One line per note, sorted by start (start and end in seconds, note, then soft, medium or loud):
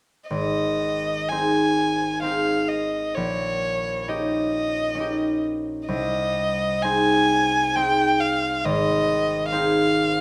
0.30 3.19 G#1 soft
0.30 1.31 D#5 medium
1.29 2.22 C4 soft
1.29 2.23 D#4 soft
1.29 2.23 G#4 soft
1.29 2.22 G#5 medium
2.22 3.20 C4 soft
2.22 4.07 D#4 soft
2.22 3.20 G#4 soft
2.22 2.70 F5 medium
2.69 3.16 D#5 soft
3.14 5.93 A#1 soft
3.14 4.10 C#5 medium
4.08 4.94 C#4 soft
4.08 4.96 D#4 soft
4.08 4.96 G4 soft
4.08 5.44 D#5 soft
4.95 5.92 C#4 soft
4.95 6.83 D#4 soft
5.00 5.92 G4 soft
5.87 8.68 C2 soft
5.87 6.84 D#5 medium
6.83 7.75 C4 soft
6.83 7.76 D#4 soft
6.83 7.76 G#4 soft
6.83 7.77 G#5 medium
7.76 9.51 C4 soft
7.76 9.52 D#4 soft
7.76 9.52 G#4 soft
7.76 8.22 G5 medium
8.20 8.66 F5 medium
8.65 10.21 G#1 medium
8.65 9.50 D#5 medium
9.50 10.21 C4 soft
9.50 10.21 D#4 soft
9.50 10.21 G#4 soft
9.50 10.21 F5 medium